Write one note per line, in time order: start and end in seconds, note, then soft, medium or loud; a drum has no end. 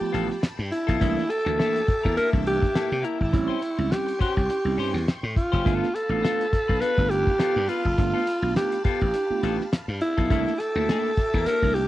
0.00 0.34 F3 medium
0.00 0.34 A3 medium
0.00 0.34 B3 medium
0.00 0.34 F4 medium
0.00 0.42 G4 medium
0.00 0.97 G5 medium
0.00 3.29 A5 medium
0.00 0.97 B5 medium
0.00 muted slap bass stroke soft
0.12 0.28 A1 medium
0.12 0.31 B3 medium
0.12 0.29 F4 medium
0.12 0.28 A4 medium
0.12 closed hi-hat medium
0.29 muted clean electric guitar stroke medium
0.29 snare soft
0.41 muted clean electric guitar stroke soft
0.41 snare loud
0.41 closed hi-hat loud
0.58 0.70 G2 loud
0.58 muted clean electric guitar stroke medium
0.71 0.80 B3 soft
0.71 0.80 D4 soft
0.71 1.31 E4 medium
0.71 closed hi-hat medium
0.87 1.00 B1 loud
0.87 1.00 B3 medium
0.87 1.01 F4 medium
0.87 1.01 A4 medium
0.87 kick medium
0.87 snare soft
0.87 closed hi-hat soft
1.00 1.15 C2 loud
1.00 1.22 E3 loud
1.00 1.22 A3 medium
1.00 1.22 A#3 loud
1.00 1.22 D4 loud
1.00 1.23 E4 loud
1.00 1.23 A4 medium
1.00 3.31 E5 medium
1.00 3.31 G5 medium
1.00 3.30 D6 loud
1.00 kick loud
1.00 closed hi-hat medium
1.18 snare soft
1.29 2.17 A4 loud
1.29 muted clean electric guitar stroke soft
1.29 closed hi-hat medium
1.45 1.57 D2 medium
1.45 1.79 E3 medium
1.45 1.80 A3 medium
1.45 1.56 A#3 medium
1.45 1.80 A#3 medium
1.45 1.79 D4 medium
1.45 1.57 E4 medium
1.45 1.58 A4 medium
1.57 1.80 A#3 medium
1.57 1.81 E4 loud
1.57 1.81 A4 loud
1.57 snare loud
1.57 closed hi-hat medium
1.76 closed hi-hat medium
1.86 muted clean electric guitar stroke soft
1.86 muted slap bass stroke soft
1.86 kick loud
1.86 snare soft
1.86 closed hi-hat medium
2.03 2.16 E2 medium
2.03 2.15 A#3 medium
2.03 2.16 E4 medium
2.03 2.18 A#4 medium
2.03 kick medium
2.16 2.44 A#3 medium
2.16 2.25 A#3 medium
2.16 2.25 D4 medium
2.16 2.44 E4 medium
2.16 2.45 A4 medium
2.16 2.30 A#4 loud
2.16 muted slap bass stroke medium
2.16 closed hi-hat medium
2.33 2.58 C2 medium
2.33 2.66 E3 medium
2.33 2.66 A3 medium
2.33 2.66 A#3 medium
2.33 2.66 D4 medium
2.33 kick loud
2.33 snare soft
2.47 3.06 G4 loud
2.47 closed hi-hat medium
2.62 muted clean electric guitar stroke soft
2.62 kick loud
2.62 snare soft
2.74 2.97 A#3 medium
2.74 2.91 E4 medium
2.74 2.89 A4 loud
2.74 snare loud
2.74 closed hi-hat loud
2.91 3.03 C3 loud
2.91 muted clean electric guitar stroke soft
3.02 3.21 A#3 medium
3.02 3.12 A#3 soft
3.02 3.13 C4 soft
3.02 3.20 E4 medium
3.02 3.93 E4 medium
3.02 3.19 A#4 medium
3.02 closed hi-hat medium
3.19 3.32 G#1 loud
3.19 muted clean electric guitar stroke soft
3.19 kick medium
3.32 3.48 A1 loud
3.32 3.54 G3 loud
3.32 3.54 C4 loud
3.32 3.54 C#4 loud
3.32 3.54 E4 loud
3.32 5.63 G5 medium
3.32 5.63 C6 medium
3.32 5.63 C#6 medium
3.32 muted clean electric guitar stroke soft
3.32 kick loud
3.32 closed hi-hat medium
3.48 3.60 C#4 medium
3.48 3.61 G4 medium
3.48 3.62 C5 medium
3.61 muted clean electric guitar stroke soft
3.61 closed hi-hat medium
3.78 3.90 C#2 loud
3.78 4.11 G3 medium
3.78 4.11 C4 medium
3.78 4.11 C#4 medium
3.78 4.12 E4 medium
3.78 muted clean electric guitar stroke soft
3.91 4.21 G4 medium
3.91 muted clean electric guitar stroke soft
3.91 snare loud
3.91 closed hi-hat loud
4.07 muted clean electric guitar stroke soft
4.07 closed hi-hat medium
4.19 4.41 C#4 medium
4.19 4.37 G4 medium
4.19 5.06 G4 medium
4.19 4.35 C5 loud
4.19 muted slap bass stroke soft
4.19 kick medium
4.19 closed hi-hat medium
4.36 4.48 C2 medium
4.36 muted clean electric guitar stroke soft
4.36 kick medium
4.36 snare soft
4.49 4.57 C#4 medium
4.49 4.57 E4 medium
4.49 muted clean electric guitar stroke soft
4.49 closed hi-hat medium
4.65 4.76 C2 medium
4.65 4.98 G3 medium
4.65 4.98 C4 medium
4.65 4.98 C#4 medium
4.65 4.98 E4 medium
4.77 4.92 G2 medium
4.77 4.96 C#4 medium
4.77 4.94 G4 medium
4.77 4.93 C5 medium
4.77 open hi-hat medium
4.94 5.05 E2 loud
4.94 muted clean electric guitar stroke medium
4.94 snare soft
5.07 muted clean electric guitar stroke soft
5.07 snare loud
5.07 closed hi-hat loud
5.23 5.35 A2 loud
5.23 muted clean electric guitar stroke medium
5.36 5.44 C#4 soft
5.36 5.44 E4 soft
5.36 5.96 F4 medium
5.36 kick loud
5.36 closed hi-hat medium
5.52 5.64 F#1 loud
5.52 5.65 C#4 medium
5.52 5.66 G4 medium
5.52 5.72 C5 medium
5.52 kick medium
5.52 snare soft
5.65 5.80 G1 loud
5.65 5.86 A3 loud
5.65 5.87 B3 medium
5.65 5.86 B3 loud
5.65 5.86 D4 loud
5.65 5.86 F4 loud
5.65 5.87 F4 medium
5.65 5.88 A4 loud
5.65 10.27 F5 medium
5.65 10.26 A5 medium
5.65 10.26 B5 loud
5.65 kick loud
5.65 closed hi-hat medium
5.83 snare soft
5.95 6.82 A4 loud
5.95 muted clean electric guitar stroke soft
5.95 closed hi-hat medium
6.09 6.21 A1 medium
6.09 6.43 A3 medium
6.09 6.43 B3 medium
6.09 6.22 B3 soft
6.09 6.44 D4 medium
6.09 6.43 F4 medium
6.09 6.23 F4 medium
6.09 6.24 A4 medium
6.23 6.45 B3 medium
6.23 6.46 F4 loud
6.23 6.46 A4 loud
6.23 snare loud
6.23 closed hi-hat medium
6.41 closed hi-hat medium
6.51 muted clean electric guitar stroke soft
6.51 muted slap bass stroke soft
6.51 kick loud
6.51 snare soft
6.51 closed hi-hat medium
6.68 6.80 B1 medium
6.68 6.79 B3 medium
6.68 6.80 F4 medium
6.68 6.82 B4 medium
6.68 kick medium
6.80 7.08 B3 medium
6.80 6.89 D4 medium
6.80 7.09 F4 medium
6.80 6.89 F4 medium
6.80 7.09 A4 medium
6.80 7.11 B4 loud
6.80 muted slap bass stroke soft
6.80 closed hi-hat loud
6.98 7.23 G1 medium
6.98 7.31 A3 medium
6.98 7.31 B3 medium
6.98 7.31 D4 medium
6.98 7.31 F4 medium
6.98 kick loud
6.98 snare soft
7.10 7.70 G4 loud
7.10 muted clean electric guitar stroke soft
7.10 closed hi-hat medium
7.27 muted clean electric guitar stroke medium
7.27 kick medium
7.27 snare soft
7.38 7.61 B3 loud
7.38 7.55 F4 loud
7.38 7.54 A4 loud
7.38 snare loud
7.38 closed hi-hat loud
7.56 7.67 G2 loud
7.56 muted clean electric guitar stroke medium
7.68 7.86 B3 medium
7.68 7.77 D4 soft
7.68 7.78 E4 soft
7.68 8.56 F4 loud
7.68 7.85 F4 medium
7.68 7.85 B4 medium
7.68 closed hi-hat medium
7.85 7.96 F#1 medium
7.85 muted clean electric guitar stroke medium
7.85 kick medium
7.98 8.12 G1 loud
7.98 8.19 A3 loud
7.98 8.19 B3 loud
7.98 8.19 D4 loud
7.98 8.19 F4 loud
7.98 muted clean electric guitar stroke soft
7.98 kick loud
7.98 closed hi-hat medium
8.14 8.26 B3 medium
8.14 8.27 F4 medium
8.14 8.28 A4 medium
8.27 muted clean electric guitar stroke soft
8.27 closed hi-hat medium
8.42 8.54 B1 loud
8.42 8.76 A3 medium
8.42 8.76 B3 medium
8.42 8.76 D4 medium
8.42 8.76 F4 medium
8.42 muted clean electric guitar stroke medium
8.56 8.83 G4 medium
8.56 muted clean electric guitar stroke soft
8.56 snare loud
8.56 closed hi-hat medium
8.72 muted clean electric guitar stroke medium
8.72 closed hi-hat medium
8.84 9.06 B3 medium
8.84 9.01 F4 medium
8.84 9.70 G4 medium
8.84 9.00 A4 medium
8.84 muted slap bass stroke medium
8.84 kick loud
8.84 closed hi-hat medium
9.01 9.12 A1 medium
9.01 muted clean electric guitar stroke soft
9.01 kick medium
9.14 9.22 D4 medium
9.14 9.22 E4 medium
9.14 muted clean electric guitar stroke soft
9.14 closed hi-hat loud
9.30 9.63 A3 medium
9.30 9.63 B3 medium
9.30 9.63 D4 medium
9.30 9.63 F4 medium
9.30 muted slap bass stroke soft
9.43 9.57 A1 medium
9.43 9.61 B3 medium
9.43 9.59 F4 medium
9.43 9.58 A4 medium
9.43 closed hi-hat medium
9.59 muted clean electric guitar stroke medium
9.59 snare soft
9.72 muted clean electric guitar stroke soft
9.72 snare loud
9.72 closed hi-hat loud
9.88 9.99 G2 loud
9.88 muted clean electric guitar stroke medium
10.01 10.10 D4 soft
10.01 10.61 E4 medium
10.01 10.10 F4 soft
10.01 closed hi-hat medium
10.17 10.30 B1 loud
10.17 10.30 B3 medium
10.17 10.31 F4 medium
10.17 10.31 A4 medium
10.17 kick medium
10.17 snare soft
10.30 10.44 C2 loud
10.30 10.51 A3 loud
10.30 10.52 A#3 loud
10.30 10.51 A#3 loud
10.30 10.52 D4 loud
10.30 10.52 E4 loud
10.30 10.53 A4 loud
10.30 11.88 E5 medium
10.30 11.88 G5 medium
10.30 11.88 A5 medium
10.30 11.88 D6 medium
10.30 kick loud
10.30 closed hi-hat medium
10.48 snare soft
10.59 11.48 A4 medium
10.59 muted clean electric guitar stroke soft
10.59 closed hi-hat medium
10.75 10.87 D2 loud
10.75 11.09 A3 medium
10.75 11.09 A#3 medium
10.75 10.88 A#3 medium
10.75 11.09 D4 medium
10.75 11.09 E4 medium
10.75 10.89 E4 medium
10.75 10.89 A4 medium
10.89 11.10 A#3 medium
10.89 11.11 E4 medium
10.89 11.11 A4 medium
10.89 snare loud
10.89 closed hi-hat medium
11.17 muted slap bass stroke soft
11.17 muted clean electric guitar stroke medium
11.17 kick loud
11.17 snare soft
11.17 closed hi-hat medium
11.34 11.45 E2 medium
11.34 11.46 A#3 medium
11.34 11.47 E4 medium
11.34 11.48 A#4 medium
11.34 kick medium
11.46 11.74 A#3 medium
11.46 11.54 D4 medium
11.46 11.55 E4 medium
11.46 11.74 E4 medium
11.46 11.75 A4 medium
11.46 11.76 A#4 loud
11.46 muted slap bass stroke medium
11.46 closed hi-hat loud
11.62 11.88 C2 medium
11.62 11.88 A3 medium
11.62 11.88 A#3 medium
11.62 11.88 D4 medium
11.62 11.88 E4 medium
11.62 kick medium
11.62 snare soft
11.74 11.88 G4 loud
11.74 closed hi-hat medium